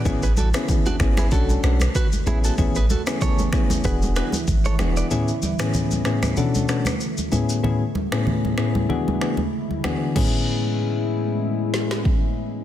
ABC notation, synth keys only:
X:1
M:4/4
L:1/16
Q:"Swing 16ths" 1/4=95
K:A
V:1 name="Synth keys"
[B,CEG] z2 [B,CEG]3 [B,CEG]2 [CDFA]2 [CDFA] z3 [B,CEG]2 | [B,CEG] z2 [B,CEG]3 [B,CEG]2 [B,DFG]2 [B,DFG] z3 [B,DFG]2 | [A,,B,CEG] z2 [A,,B,CEG]3 [A,,B,CEG]2 [B,,CDFA]2 [B,,CDFA] z3 [A,,B,CEG]2 | [A,,B,CEG] z2 [A,,B,CEG]3 [A,,B,CEG]2 [E,B,DFG]2 [E,B,DFG] z3 [E,B,DFG]2 |
[A,,B,CEG]16 |]